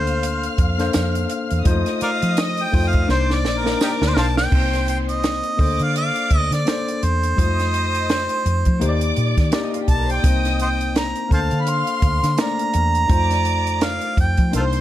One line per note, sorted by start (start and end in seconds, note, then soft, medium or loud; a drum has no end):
0.00 0.47 D2 loud
0.00 0.58 A#3 medium
0.00 0.59 D4 medium
0.00 0.59 A4 medium
0.00 0.60 C5 medium
0.00 0.84 C5 loud
0.00 1.62 F5 medium
0.00 1.62 F6 medium
0.07 closed hi-hat soft
0.23 closed hi-hat medium
0.43 closed hi-hat medium
0.58 0.89 F2 medium
0.58 kick loud
0.58 closed hi-hat medium
0.78 1.47 A#3 medium
0.78 1.47 D4 medium
0.78 1.48 A4 medium
0.78 1.48 C5 medium
0.78 snare soft
0.78 closed hi-hat medium
0.93 1.25 F2 medium
0.93 snare loud
0.93 closed hi-hat medium
0.93 tambourine medium
1.15 closed hi-hat medium
1.30 closed hi-hat medium
1.51 1.64 E2 medium
1.51 closed hi-hat medium
1.64 1.83 F2 loud
1.64 1.73 G#3 medium
1.64 2.50 D#4 medium
1.64 2.50 F4 medium
1.64 2.50 C5 loud
1.64 3.05 D#5 medium
1.64 3.05 D#6 medium
1.64 kick loud
1.64 closed hi-hat medium
1.71 2.53 A3 medium
1.86 snare soft
1.86 closed hi-hat soft
2.01 2.10 A#4 medium
2.01 2.09 D5 medium
2.01 2.42 F5 medium
2.01 muted fingered electric bass stroke soft
2.01 closed hi-hat medium
2.22 2.65 F3 medium
2.22 closed hi-hat medium
2.37 2.65 D#5 loud
2.37 snare loud
2.37 closed hi-hat medium
2.37 tambourine medium
2.57 closed hi-hat soft
2.64 2.90 G5 loud
2.72 3.04 F2 medium
2.72 3.08 A3 medium
2.72 3.08 D#4 medium
2.72 3.09 F4 medium
2.72 3.09 C5 medium
2.72 kick medium
2.72 open hi-hat medium
2.88 3.10 F5 medium
2.93 kick medium
2.93 closed hi-hat soft
3.07 3.44 C2 loud
3.07 3.52 A#3 medium
3.07 3.53 D4 medium
3.07 3.53 D#4 medium
3.07 3.54 C5 medium
3.07 3.36 C5 loud
3.07 4.49 D5 medium
3.07 4.49 D6 medium
3.07 snare medium
3.30 snare medium
3.34 3.60 D5 medium
3.44 3.74 A#1 loud
3.44 snare medium
3.58 3.82 A#4 medium
3.64 4.33 A#3 medium
3.64 4.33 D4 medium
3.64 4.34 D#4 medium
3.64 4.34 A#4 medium
3.64 snare medium
3.81 3.89 D#4 medium
3.81 3.91 G4 medium
3.81 4.04 A#4 medium
3.81 snare medium
3.81 tambourine medium
4.02 4.14 D2 medium
4.02 snare medium
4.07 4.17 C5 medium
4.16 4.46 B1 medium
4.16 4.26 C5 medium
4.16 4.27 F5 medium
4.16 4.37 A5 loud
4.16 snare loud
4.37 4.85 G5 loud
4.37 snare loud
4.50 5.41 C2 medium
4.50 5.56 A#3 medium
4.50 5.59 C4 medium
4.50 5.60 D#4 medium
4.50 5.22 C5 medium
4.50 5.59 C5 medium
4.50 5.22 C6 loud
4.50 kick loud
4.50 crash medium
4.74 snare soft
4.74 closed hi-hat soft
4.88 4.98 G5 medium
4.88 closed hi-hat medium
5.09 5.85 D#5 loud
5.09 closed hi-hat medium
5.24 snare loud
5.24 closed hi-hat medium
5.43 closed hi-hat soft
5.57 5.77 D2 medium
5.57 6.46 A#3 medium
5.57 6.47 D4 medium
5.57 6.47 A4 medium
5.57 6.48 C5 medium
5.57 7.00 D5 medium
5.57 6.99 D6 medium
5.57 kick loud
5.57 open hi-hat medium
5.79 6.10 D3 medium
5.79 5.97 F5 medium
5.79 closed hi-hat soft
5.96 6.49 F5 medium
5.96 closed hi-hat medium
6.16 closed hi-hat soft
6.31 6.49 D2 medium
6.31 kick medium
6.31 closed hi-hat medium
6.51 6.64 D3 medium
6.51 7.05 D5 medium
6.51 snare soft
6.51 closed hi-hat medium
6.65 7.24 A#3 medium
6.65 7.24 D4 medium
6.65 7.25 A4 medium
6.65 7.25 C5 medium
6.65 snare loud
6.65 closed hi-hat medium
6.88 closed hi-hat medium
7.03 7.33 E2 medium
7.03 9.18 C5 loud
7.03 closed hi-hat medium
7.23 closed hi-hat soft
7.36 8.27 F2 medium
7.36 7.45 G3 medium
7.36 8.48 D#4 medium
7.36 8.48 F4 medium
7.36 8.49 C5 medium
7.36 8.43 D#5 medium
7.36 8.44 D#6 loud
7.36 kick loud
7.36 closed hi-hat medium
7.43 8.51 A3 medium
7.60 snare soft
7.60 closed hi-hat soft
7.74 closed hi-hat medium
7.95 closed hi-hat soft
8.09 snare loud
8.09 closed hi-hat medium
8.29 closed hi-hat soft
8.46 8.63 F2 medium
8.46 closed hi-hat medium
8.65 8.83 F3 medium
8.65 kick medium
8.65 closed hi-hat soft
8.80 9.11 D#2 medium
8.80 9.40 A#3 medium
8.80 9.40 D#4 medium
8.80 9.41 G4 medium
8.80 8.90 C5 medium
8.80 9.53 D5 medium
8.80 9.53 D6 medium
8.80 closed hi-hat medium
8.89 9.45 D5 loud
9.01 closed hi-hat soft
9.16 9.35 A#2 medium
9.16 closed hi-hat medium
9.37 9.50 D#3 medium
9.37 kick medium
9.37 snare soft
9.37 closed hi-hat medium
9.51 10.09 A#3 medium
9.51 10.10 D#4 medium
9.51 10.10 G4 medium
9.51 10.11 D5 medium
9.51 snare loud
9.51 closed hi-hat medium
9.62 9.73 D#4 medium
9.62 9.73 D#5 medium
9.72 9.80 F4 medium
9.72 9.80 F5 medium
9.72 closed hi-hat medium
9.80 9.88 G4 medium
9.80 9.88 G5 medium
9.87 10.18 B1 medium
9.87 9.98 A4 medium
9.87 9.98 A5 medium
9.87 10.13 A5 loud
9.87 kick medium
9.87 closed hi-hat medium
9.96 10.08 A#4 medium
9.96 10.08 A#5 medium
10.06 10.15 C5 medium
10.06 10.15 C6 medium
10.06 closed hi-hat soft
10.11 10.23 D5 medium
10.11 10.61 G5 medium
10.11 10.23 D6 medium
10.21 11.12 C2 medium
10.21 11.28 A#3 medium
10.21 11.31 C4 medium
10.21 11.31 D#4 medium
10.21 10.93 D#5 medium
10.21 10.93 D#6 medium
10.21 kick loud
10.21 closed hi-hat loud
10.25 11.31 C5 medium
10.45 snare soft
10.45 closed hi-hat soft
10.60 10.69 C5 medium
10.60 10.68 D#5 medium
10.60 10.94 G5 medium
10.60 closed hi-hat medium
10.81 closed hi-hat soft
10.96 11.30 A#5 loud
10.96 snare loud
10.96 closed hi-hat medium
11.16 closed hi-hat soft
11.29 11.49 D2 loud
11.29 12.18 A#3 medium
11.29 12.19 D4 medium
11.29 12.19 A4 medium
11.29 12.20 C5 medium
11.29 12.70 F5 medium
11.29 12.70 F6 loud
11.29 kick loud
11.29 closed hi-hat medium
11.33 11.40 C5 medium
11.33 11.40 F5 medium
11.33 11.63 A5 medium
11.51 11.82 D3 loud
11.51 closed hi-hat soft
11.61 11.71 B5 medium
11.67 12.43 C6 loud
11.67 closed hi-hat medium
11.87 closed hi-hat soft
12.02 12.20 D2 loud
12.02 kick medium
12.02 closed hi-hat medium
12.23 12.36 D3 medium
12.23 snare soft
12.23 closed hi-hat medium
12.37 12.96 A3 medium
12.37 12.95 A#3 medium
12.37 12.96 D4 medium
12.37 12.97 D5 medium
12.37 snare loud
12.37 closed hi-hat medium
12.41 13.86 A#5 loud
12.59 closed hi-hat medium
12.74 13.04 E2 medium
12.74 closed hi-hat medium
12.95 closed hi-hat soft
13.08 13.98 F2 loud
13.08 14.19 A3 medium
13.08 14.19 D#4 medium
13.08 14.20 F4 medium
13.08 14.20 C5 medium
13.08 14.14 D5 medium
13.08 14.14 D6 loud
13.08 kick loud
13.08 closed hi-hat medium
13.31 snare soft
13.31 closed hi-hat soft
13.45 closed hi-hat medium
13.67 closed hi-hat soft
13.81 14.19 F5 medium
13.81 snare loud
13.81 closed hi-hat medium
14.01 closed hi-hat soft
14.17 14.35 F2 medium
14.17 14.52 G5 medium
14.17 kick medium
14.17 closed hi-hat medium
14.37 14.55 F3 medium
14.37 kick medium
14.37 closed hi-hat soft
14.52 14.81 C2 medium
14.52 14.81 A#3 medium
14.52 14.81 D4 medium
14.52 14.81 D#4 medium
14.52 14.61 A#4 medium
14.52 14.81 C5 medium
14.52 14.81 C6 loud
14.52 closed hi-hat medium
14.56 14.64 F4 medium
14.56 14.63 A4 medium
14.56 14.81 C5 medium
14.61 14.81 C5 medium
14.73 closed hi-hat soft